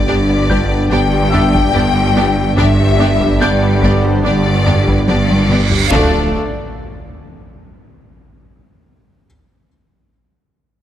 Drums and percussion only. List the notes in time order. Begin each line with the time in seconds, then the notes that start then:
0.50 taiko
1.34 taiko low-mid
1.54 taiko
1.75 taiko low-mid
2.58 taiko
3.20 taiko
3.83 taiko
4.67 taiko low-mid
4.87 taiko
5.08 taiko high
5.29 taiko high
5.49 taiko mid
5.70 taiko low
5.91 taiko